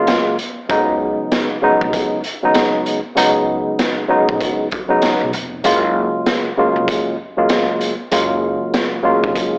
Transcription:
0.00 0.35 C#3 medium
0.00 0.36 F#3 medium
0.00 0.36 G#3 medium
0.00 0.36 A#3 medium
0.00 0.36 F4 loud
0.07 snare loud
0.07 closed hi-hat medium
0.39 closed hi-hat medium
0.69 1.12 C#2 loud
0.69 1.56 C#3 loud
0.69 1.56 F#3 medium
0.69 1.56 G#3 medium
0.69 1.57 B3 medium
0.69 1.57 D#4 loud
0.69 kick loud
0.69 closed hi-hat medium
1.32 snare loud
1.32 closed hi-hat medium
1.62 2.20 C#3 medium
1.62 2.20 F#3 medium
1.62 2.21 G#3 medium
1.62 2.21 B3 medium
1.62 2.21 D#4 loud
1.81 1.92 A#1 medium
1.81 kick medium
1.93 kick loud
1.93 closed hi-hat medium
2.24 closed hi-hat soft
2.43 2.99 C#3 medium
2.43 2.99 F#3 medium
2.43 2.99 G#3 medium
2.43 3.00 B3 medium
2.43 3.00 D#4 loud
2.54 snare loud
2.54 closed hi-hat medium
2.86 closed hi-hat medium
3.15 3.59 C#2 loud
3.15 4.03 C#3 loud
3.15 4.03 F#3 medium
3.15 4.04 G#3 medium
3.15 4.04 B3 medium
3.15 4.04 D#4 loud
3.15 closed hi-hat medium
3.79 snare loud
3.79 closed hi-hat medium
4.08 4.67 C#3 medium
4.08 4.67 F#3 medium
4.08 4.67 G#3 medium
4.08 4.68 B3 medium
4.08 4.68 D#4 loud
4.29 4.39 A#1 medium
4.29 kick medium
4.41 kick medium
4.41 closed hi-hat medium
4.71 kick medium
4.71 closed hi-hat soft
4.88 5.30 C#3 medium
4.88 5.30 F#3 medium
4.88 5.30 G#3 medium
4.88 5.31 B3 medium
4.88 5.31 D#4 loud
5.02 snare loud
5.02 closed hi-hat medium
5.21 5.32 B1 medium
5.33 5.60 F1 medium
5.33 closed hi-hat medium
5.63 6.07 F#1 loud
5.63 6.51 C#3 medium
5.63 6.51 F#3 medium
5.63 6.51 G#3 medium
5.63 6.52 A#3 medium
5.63 6.52 F4 loud
5.63 closed hi-hat medium
6.26 snare loud
6.26 closed hi-hat medium
6.57 7.15 C#3 loud
6.57 7.15 F#3 medium
6.57 7.16 G#3 medium
6.57 7.16 A#3 medium
6.57 7.16 F4 medium
6.76 6.87 F1 medium
6.88 kick medium
6.88 closed hi-hat medium
7.37 7.93 C#3 medium
7.37 7.93 F#3 medium
7.37 7.94 G#3 medium
7.37 7.94 A#3 medium
7.37 7.94 F4 medium
7.49 snare loud
7.49 closed hi-hat medium
7.81 closed hi-hat medium
8.11 8.54 F#1 loud
8.11 8.98 C#3 medium
8.11 8.99 F#3 medium
8.11 8.99 G#3 medium
8.11 8.99 A#3 medium
8.11 8.99 F4 medium
8.11 closed hi-hat medium
8.74 snare loud
8.74 closed hi-hat medium
9.03 9.58 C#3 medium
9.03 9.58 F#3 medium
9.03 9.58 G#3 medium
9.03 9.58 A#3 medium
9.03 9.58 F4 loud
9.24 9.34 F1 medium
9.24 kick medium
9.35 kick medium
9.35 closed hi-hat medium

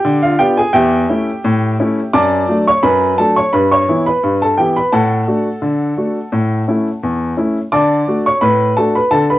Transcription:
0.00 0.21 G4 medium
0.00 0.16 G5 loud
0.05 0.34 D3 medium
0.23 0.39 F4 medium
0.23 0.39 F5 medium
0.39 0.59 B3 medium
0.39 0.59 D4 soft
0.39 0.59 F4 medium
0.39 0.58 G4 medium
0.39 0.58 G5 loud
0.57 0.74 G#4 medium
0.57 0.74 G#5 medium
0.73 1.04 E2 medium
0.73 2.10 G4 medium
0.73 2.10 E5 medium
0.73 2.09 G5 loud
1.09 1.28 A3 soft
1.09 1.29 C#4 soft
1.09 1.29 E4 soft
1.45 1.74 A2 medium
1.79 1.98 A3 medium
1.79 1.99 C#4 medium
1.79 1.99 E4 medium
2.13 2.43 F#2 medium
2.13 2.64 D5 medium
2.13 2.64 A5 medium
2.13 2.57 D6 loud
2.49 2.68 F#3 medium
2.49 2.68 A3 medium
2.49 2.68 D4 medium
2.68 2.83 C#5 medium
2.68 2.84 C#6 medium
2.83 3.13 F#2 medium
2.83 3.16 B4 medium
2.83 3.16 B5 loud
3.18 3.38 F#3 soft
3.18 3.38 A3 soft
3.18 3.39 D4 soft
3.18 3.36 A4 medium
3.18 3.37 A5 medium
3.37 3.52 C#5 medium
3.37 3.53 C#6 medium
3.53 3.83 G2 medium
3.53 3.71 B4 medium
3.53 3.72 B5 medium
3.71 4.05 C#5 medium
3.71 3.99 C#6 medium
3.88 4.07 E3 soft
3.88 4.07 B3 soft
3.88 4.08 E4 medium
4.06 4.40 B4 medium
4.06 4.34 B5 medium
4.23 4.53 G2 medium
4.42 4.57 A4 medium
4.42 4.57 A5 medium
4.57 4.77 E3 soft
4.57 4.77 B3 soft
4.57 4.78 E4 soft
4.57 4.76 G4 medium
4.57 4.76 G5 medium
4.76 4.92 B4 medium
4.76 4.92 B5 medium
4.92 5.22 A2 medium
4.92 7.33 A4 medium
4.92 7.33 F#5 medium
4.92 6.88 A5 medium
5.27 5.47 A3 soft
5.27 5.47 D4 soft
5.27 5.47 F#4 soft
5.62 5.92 D3 medium
5.97 6.16 A3 soft
5.97 6.16 D4 soft
5.97 6.17 F#4 soft
6.32 6.62 A2 medium
6.68 6.87 A3 soft
6.68 6.87 C#4 soft
6.68 6.87 E4 soft
7.03 7.32 E2 medium
7.37 7.56 A3 soft
7.37 7.56 C#4 soft
7.37 7.57 E4 soft
7.72 8.02 D3 medium
7.72 8.23 D5 medium
7.72 8.23 A5 medium
7.72 8.15 D6 loud
8.08 8.27 A3 soft
8.08 8.27 D4 soft
8.08 8.27 F#4 soft
8.26 8.41 C#5 medium
8.26 8.42 C#6 medium
8.41 8.71 A2 medium
8.41 8.75 B4 medium
8.41 8.74 B5 medium
8.77 8.96 A3 soft
8.77 8.96 D4 soft
8.77 8.97 F#4 soft
8.77 8.95 A4 medium
8.77 8.95 A5 medium
8.95 9.11 B4 medium
8.95 9.11 B5 medium
9.11 9.39 D3 medium
9.11 9.29 A4 medium
9.11 9.30 A5 medium
9.30 9.39 B4 medium
9.30 9.39 B5 medium

